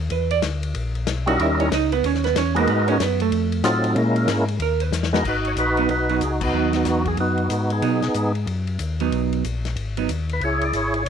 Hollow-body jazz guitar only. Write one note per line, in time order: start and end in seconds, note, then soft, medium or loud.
0.12 0.31 B4 medium
0.31 0.38 D5 loud
1.28 1.39 F#4 medium
1.28 1.39 F#5 medium
1.41 1.60 E4 medium
1.41 1.60 E5 medium
1.60 1.72 C#4 medium
1.60 1.72 C#5 medium
1.74 1.93 D#4 medium
1.74 1.92 D#5 medium
1.93 2.04 B3 medium
1.93 2.04 B4 medium
2.06 2.25 C#4 medium
2.06 2.25 C#5 medium
2.25 2.36 B3 medium
2.25 2.36 B4 medium
2.38 2.57 C#4 medium
2.38 2.56 C#5 medium
2.58 2.69 A#3 medium
2.58 2.69 A#4 medium
2.70 2.88 B3 medium
2.70 2.89 B4 medium
2.88 3.00 C#4 medium
2.88 3.00 C#5 loud
3.02 3.21 B3 medium
3.02 3.21 B4 medium
3.22 3.62 A3 medium
3.22 3.62 A4 medium
4.62 4.81 A#4 medium
4.81 4.95 B4 loud
4.95 5.06 A#4 medium
5.78 5.88 F#3 medium
5.78 5.89 B3 medium
5.78 5.89 D#4 medium
6.09 6.20 F#3 medium
6.09 6.21 B3 medium
6.09 6.21 D#4 medium
6.53 7.43 F#3 medium
6.53 7.43 B3 medium
6.53 7.44 D#4 medium
7.82 8.01 F#3 medium
7.82 8.01 B3 medium
7.82 8.02 D#4 medium
9.01 9.42 F#3 medium
9.01 9.43 B3 medium
9.01 9.43 D#4 medium
9.97 10.08 F#3 medium
9.97 10.08 B3 medium
9.97 10.09 D#4 medium